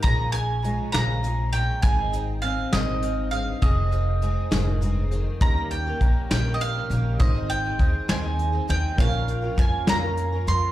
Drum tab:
HH |xxxxxx|xxxxxx|xxxxxx|xxxxxx|
SD |---o--|---o--|---o--|---o--|
BD |o-----|o-----|o-----|o-o---|

HH |xxxxxx|xxxxxx|
SD |---o--|---o--|
BD |o-o---|o-o---|